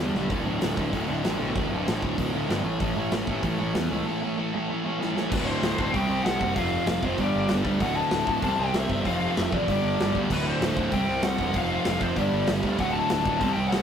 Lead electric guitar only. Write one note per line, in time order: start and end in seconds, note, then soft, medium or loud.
5.30 5.45 B4 loud
5.45 5.94 C5 medium
5.93 6.22 G5 loud
6.24 6.53 F#5 medium
6.55 6.86 F5 loud
6.87 7.03 F5 loud
7.05 7.20 C5 medium
7.20 7.50 D5 medium
7.82 7.96 F#5 loud
7.96 8.39 A5 loud
8.44 8.58 A5 medium
8.60 8.74 G5 medium
8.75 9.06 E5 medium
9.07 9.38 F5 loud
9.38 9.54 E5 medium
9.54 10.15 D5 medium
10.33 10.47 B4 loud
10.48 10.95 C5 medium
10.93 11.22 G5 medium
11.24 11.55 F#5 medium
11.56 11.84 F5 loud
11.86 12.00 F5 medium
12.02 12.16 C5 medium
12.17 12.46 D5 medium
12.80 12.92 F#5 loud
12.93 13.39 A5 loud
13.40 13.53 A5 loud
13.54 13.68 G5 loud
13.68 13.82 F#5 loud